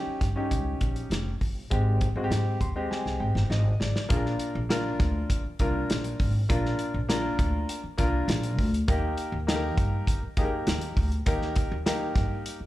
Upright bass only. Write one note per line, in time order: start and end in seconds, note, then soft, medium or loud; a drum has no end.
0.07 muted upright bass stroke soft
0.21 0.53 G2 medium
0.51 0.73 C#2 medium
0.81 1.03 A#1 medium
1.10 1.33 F1 medium
1.41 1.63 G1 medium
1.71 2.04 G#1 loud
2.15 2.27 G#1 medium
2.30 2.53 G#2 medium
2.61 2.83 D#2 medium
3.06 3.17 C2 medium
3.20 3.31 G#1 medium
3.35 3.46 G1 medium
3.50 3.72 G#1 medium
3.80 3.91 G#1 medium
4.10 4.32 A#1 loud
4.55 4.88 A#1 medium
5.00 5.22 D2 loud
5.45 muted upright bass stroke soft
5.60 5.82 C2 loud
5.90 6.12 A#1 medium
6.19 6.42 G#1 medium
6.50 6.72 A#1 loud
6.94 7.27 A#1 medium
7.39 7.61 D2 medium
7.84 muted upright bass stroke soft
7.98 8.21 C2 medium
8.28 8.58 A#1 loud
8.58 8.80 D2 loud
8.88 9.10 D#2 medium
9.32 9.77 D#2 medium
9.77 9.99 G2 medium
10.23 muted upright bass stroke medium
10.37 10.59 F2 medium
10.67 10.89 D#2 loud
10.97 11.19 D2 medium
11.26 11.48 D#2 loud
11.71 12.04 D#2 medium
12.16 12.38 G2 medium
12.60 muted upright bass stroke soft